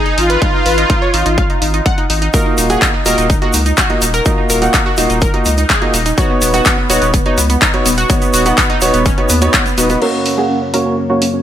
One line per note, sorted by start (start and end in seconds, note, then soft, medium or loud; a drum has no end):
0.00 0.19 D#4 medium
0.06 0.15 D#4 medium
0.06 closed hi-hat soft
0.18 0.37 G#1 medium
0.18 0.27 D#4 medium
0.18 2.06 F4 loud
0.18 open hi-hat loud
0.30 0.39 B4 medium
0.30 closed hi-hat soft
0.42 0.51 D#4 medium
0.42 kick loud
0.42 closed hi-hat medium
0.54 0.63 D#4 medium
0.66 0.85 G#1 loud
0.66 0.75 B4 medium
0.66 open hi-hat loud
0.78 0.87 D#4 medium
0.78 closed hi-hat soft
0.90 0.99 D#4 medium
0.90 kick loud
0.90 closed hi-hat medium
1.02 1.11 C#5 medium
1.14 1.23 G#1 medium
1.14 1.23 D#4 medium
1.14 open hi-hat loud
1.26 1.45 G#1 loud
1.26 1.35 D#4 medium
1.26 closed hi-hat soft
1.38 1.47 F5 medium
1.38 kick loud
1.38 closed hi-hat medium
1.50 1.59 D#4 medium
1.50 closed hi-hat soft
1.62 1.81 G#1 loud
1.62 1.71 D#4 medium
1.62 open hi-hat loud
1.74 1.83 D#4 medium
1.74 closed hi-hat soft
1.86 1.95 F#5 medium
1.86 kick loud
1.86 closed hi-hat medium
1.98 2.07 D#4 medium
1.98 closed hi-hat soft
2.10 2.29 G#1 medium
2.10 2.19 D#4 medium
2.10 open hi-hat loud
2.22 2.31 D#4 medium
2.22 closed hi-hat soft
2.34 2.67 A#3 medium
2.34 2.67 F4 medium
2.34 2.67 F#4 medium
2.34 2.43 A#4 loud
2.34 2.67 D#5 medium
2.34 kick loud
2.34 closed hi-hat medium
2.34 shaker medium
2.46 2.55 D#4 medium
2.58 2.77 D#1 loud
2.58 2.67 D#4 medium
2.58 open hi-hat loud
2.58 shaker medium
2.70 2.89 A#3 medium
2.70 2.89 F4 medium
2.70 2.89 F#4 medium
2.70 2.79 G#4 loud
2.70 2.89 F#5 medium
2.70 closed hi-hat soft
2.70 shaker soft
2.82 2.91 D#4 medium
2.82 kick loud
2.82 clap loud
2.82 closed hi-hat medium
2.82 shaker medium
2.94 3.03 D#4 medium
3.06 3.15 D#1 medium
3.06 3.25 A#3 medium
3.06 3.25 F4 medium
3.06 3.25 F#4 medium
3.06 3.15 A#4 medium
3.06 3.25 D#5 loud
3.06 open hi-hat loud
3.06 shaker medium
3.18 3.37 D#1 loud
3.18 3.27 D#4 medium
3.18 closed hi-hat soft
3.18 shaker soft
3.30 3.39 D#4 medium
3.30 kick loud
3.30 closed hi-hat medium
3.30 shaker medium
3.42 3.54 A#3 medium
3.42 3.54 F4 medium
3.42 3.51 F#4 medium
3.42 3.54 F#4 medium
3.42 3.54 D#5 medium
3.42 closed hi-hat soft
3.53 3.73 C#2 loud
3.53 3.63 D#4 medium
3.53 open hi-hat loud
3.53 shaker medium
3.66 3.75 D#4 medium
3.66 closed hi-hat soft
3.66 shaker soft
3.78 3.87 F#4 loud
3.78 kick loud
3.78 clap loud
3.78 closed hi-hat medium
3.78 shaker medium
3.90 4.02 A#3 medium
3.90 3.99 D#4 medium
3.90 4.02 F4 medium
3.90 4.02 F#4 medium
3.90 4.02 D#5 medium
3.90 closed hi-hat soft
4.02 4.21 D#1 medium
4.02 4.11 D#4 medium
4.02 open hi-hat loud
4.02 shaker loud
4.14 4.23 A#4 medium
4.14 closed hi-hat soft
4.14 shaker soft
4.25 4.59 A#3 medium
4.25 4.35 D#4 medium
4.25 4.59 F4 medium
4.25 4.59 F#4 medium
4.25 4.59 D#5 medium
4.25 kick loud
4.25 closed hi-hat medium
4.25 shaker soft
4.38 4.47 D#4 medium
4.50 4.69 D#1 loud
4.50 4.59 A#4 medium
4.50 open hi-hat loud
4.50 shaker medium
4.62 4.81 A#3 medium
4.62 4.71 D#4 medium
4.62 4.81 F4 medium
4.62 4.81 F#4 medium
4.62 4.81 F#5 medium
4.62 closed hi-hat medium
4.62 shaker soft
4.74 4.83 D#4 medium
4.74 kick loud
4.74 clap loud
4.74 closed hi-hat medium
4.74 shaker soft
4.86 4.95 F#4 medium
4.97 5.07 D#1 medium
4.97 5.17 A#3 medium
4.97 5.07 D#4 medium
4.97 5.17 F4 medium
4.97 5.17 F#4 medium
4.97 5.17 D#5 loud
4.97 open hi-hat loud
4.97 shaker medium
5.10 5.29 D#1 loud
5.10 5.19 D#4 medium
5.10 closed hi-hat medium
5.10 shaker soft
5.21 5.31 A#4 medium
5.21 kick loud
5.21 closed hi-hat medium
5.21 shaker soft
5.34 5.46 A#3 medium
5.34 5.43 D#4 medium
5.34 5.46 F4 medium
5.34 5.46 F#4 medium
5.34 5.46 D#5 medium
5.34 closed hi-hat soft
5.45 5.65 C#2 loud
5.45 5.55 D#4 medium
5.45 open hi-hat loud
5.45 shaker medium
5.58 5.67 D#4 medium
5.58 closed hi-hat soft
5.58 shaker soft
5.70 5.79 G#4 medium
5.70 kick loud
5.70 clap loud
5.70 closed hi-hat medium
5.70 shaker soft
5.82 5.94 A#3 medium
5.82 5.91 D#4 medium
5.82 5.94 F4 medium
5.82 5.94 F#4 medium
5.82 5.94 D#5 medium
5.82 closed hi-hat soft
5.94 6.13 D#1 loud
5.94 6.03 D#4 medium
5.94 open hi-hat loud
5.94 shaker loud
6.06 6.15 D#4 medium
6.06 closed hi-hat medium
6.06 shaker soft
6.18 6.51 B3 medium
6.18 6.51 D#4 medium
6.18 6.27 F#4 loud
6.18 6.51 F#4 medium
6.18 6.51 C#5 medium
6.18 kick loud
6.18 closed hi-hat medium
6.18 shaker soft
6.30 6.39 B3 medium
6.42 6.61 D#1 loud
6.42 6.51 B3 medium
6.42 open hi-hat loud
6.42 shaker medium
6.53 6.73 B3 medium
6.53 6.73 D#4 medium
6.53 6.63 F#4 medium
6.53 6.73 F#4 medium
6.53 6.73 F#5 medium
6.53 closed hi-hat medium
6.53 shaker soft
6.66 6.75 B3 medium
6.66 kick loud
6.66 clap loud
6.66 closed hi-hat medium
6.66 shaker medium
6.78 6.87 B3 medium
6.90 6.99 D#1 medium
6.90 7.09 B3 medium
6.90 7.09 D#4 medium
6.90 6.99 F#4 medium
6.90 7.09 F#4 medium
6.90 7.09 C#5 loud
6.90 open hi-hat loud
6.90 shaker medium
7.02 7.21 D#1 loud
7.02 7.11 B3 medium
7.02 closed hi-hat medium
7.02 shaker soft
7.14 7.23 B3 medium
7.14 kick loud
7.14 closed hi-hat medium
7.14 shaker medium
7.26 7.38 B3 medium
7.26 7.35 D#4 medium
7.26 7.38 D#4 medium
7.26 7.38 F#4 medium
7.26 7.38 C#5 medium
7.26 closed hi-hat soft
7.38 7.57 C#2 loud
7.38 7.47 B3 medium
7.38 open hi-hat loud
7.38 shaker medium
7.50 7.59 B3 medium
7.50 closed hi-hat medium
7.50 shaker soft
7.62 7.71 D#4 loud
7.62 kick loud
7.62 clap loud
7.62 closed hi-hat medium
7.62 shaker soft
7.74 7.83 B3 medium
7.74 7.86 B3 medium
7.74 7.86 D#4 medium
7.74 7.86 F#4 medium
7.74 7.86 C#5 loud
7.74 closed hi-hat soft
7.86 8.05 D#1 medium
7.86 7.95 B3 medium
7.86 open hi-hat loud
7.86 shaker medium
7.98 8.06 F#4 medium
7.98 closed hi-hat medium
7.98 shaker soft
8.10 8.19 B3 medium
8.10 8.43 B3 medium
8.10 8.43 D#4 medium
8.10 8.43 F#4 medium
8.10 8.43 C#5 loud
8.10 kick loud
8.10 closed hi-hat medium
8.10 shaker medium
8.22 8.31 B3 medium
8.22 closed hi-hat soft
8.22 shaker soft
8.33 8.53 D#1 loud
8.33 8.43 F#4 medium
8.33 open hi-hat loud
8.33 shaker medium
8.46 8.55 B3 medium
8.46 8.65 B3 medium
8.46 8.65 D#4 medium
8.46 8.65 F#4 medium
8.46 8.65 F#5 medium
8.46 closed hi-hat medium
8.46 shaker soft
8.58 8.67 B3 medium
8.58 kick loud
8.58 clap loud
8.58 closed hi-hat medium
8.58 shaker soft
8.70 8.79 D#4 loud
8.70 closed hi-hat soft
8.81 8.91 D#1 loud
8.81 8.91 B3 medium
8.81 9.01 B3 medium
8.81 9.01 D#4 medium
8.81 9.01 F#4 medium
8.81 9.01 C#5 loud
8.81 open hi-hat loud
8.81 shaker medium
8.94 9.13 D#1 loud
8.94 9.03 B3 medium
8.94 closed hi-hat medium
8.94 shaker soft
9.06 9.15 C#4 medium
9.06 kick loud
9.06 closed hi-hat medium
9.06 shaker soft
9.18 9.27 B3 medium
9.18 9.30 B3 medium
9.18 9.30 D#4 medium
9.18 9.30 F#4 medium
9.18 9.30 C#5 medium
9.18 closed hi-hat soft
9.29 9.49 D#2 loud
9.29 9.39 B3 medium
9.29 open hi-hat loud
9.29 shaker medium
9.41 9.51 B3 medium
9.41 9.61 B3 medium
9.41 9.61 D#4 medium
9.41 9.61 F#4 medium
9.41 9.61 C#5 medium
9.41 closed hi-hat medium
9.41 shaker soft
9.53 9.63 B3 loud
9.53 kick loud
9.53 clap loud
9.53 closed hi-hat medium
9.53 shaker medium
9.66 9.75 B3 medium
9.66 closed hi-hat soft
9.66 shaker soft
9.78 9.97 D#1 medium
9.78 9.87 B3 medium
9.78 9.88 B3 medium
9.78 9.88 D#4 medium
9.78 9.88 F#4 medium
9.78 9.88 B4 medium
9.78 open hi-hat loud
9.78 shaker medium
9.89 9.99 B3 medium
9.89 9.99 D#4 medium
9.89 9.99 F#4 medium
9.89 9.99 B4 medium
9.89 open hi-hat medium
9.89 shaker soft
10.02 11.42 F#2 medium
10.02 11.42 C#3 medium
10.02 10.35 A#3 medium
10.02 11.42 A#3 medium
10.02 10.35 C#4 medium
10.02 10.35 F#4 medium
10.02 11.42 F#4 medium
10.02 10.11 A#4 loud
10.02 11.42 C#5 medium
10.02 10.35 C#5 medium
10.02 crash medium
10.14 10.23 C#4 medium
10.26 10.35 C#4 medium
10.26 open hi-hat loud
10.38 10.57 A#3 medium
10.38 10.57 C#4 medium
10.38 10.57 F#4 medium
10.38 10.47 G#4 medium
10.38 10.57 F#5 medium
10.50 10.59 C#4 medium
10.62 10.71 C#4 medium
10.74 10.93 A#3 medium
10.74 10.93 C#4 medium
10.74 10.93 F#4 medium
10.74 10.83 A#4 medium
10.74 10.93 C#5 medium
10.74 open hi-hat loud
10.86 10.95 C#4 medium
10.98 11.07 C#4 medium
11.10 11.22 A#3 medium
11.10 11.22 C#4 medium
11.10 11.19 F#4 medium
11.10 11.22 F#4 medium
11.10 11.22 C#5 medium
11.22 11.31 C#4 medium
11.22 open hi-hat loud
11.34 11.42 C#4 medium